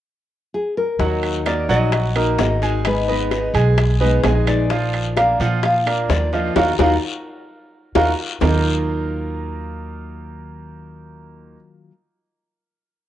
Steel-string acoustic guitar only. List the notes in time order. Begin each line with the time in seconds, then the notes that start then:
0.99 D#3 A#3 D#4 F#4
1.46 D#3 A#3 D#4 F#4
1.92 muted steel-string acoustic guitar stroke
2.15 A#3 D#4 F#4
2.38 D#3 A#3 D#4 F#4
2.62 A#3 D#4 F#4
2.85 D#3 G#3 B3 D#4 G#4
3.32 G#3 B3 D#4 G#4
3.77 muted steel-string acoustic guitar stroke
4.01 G#3 B3 D#4 G#4
4.23 G#3 B3 D#4
4.47 G#3 B3 D#4 G#4
4.70 F3 A#3 D4 F4
5.17 F3 A#3 D4 F4
5.63 muted steel-string acoustic guitar stroke
5.86 A#3 D4 F4
6.09 F3 A#3 D4 F4
6.32 A#3 D4 F4
6.56 F#3 A#3 D#4
6.79 F#3 A#3 D#4
7.95 F#3 A#3 D#4
8.40 D#3 F#3 A#3 F4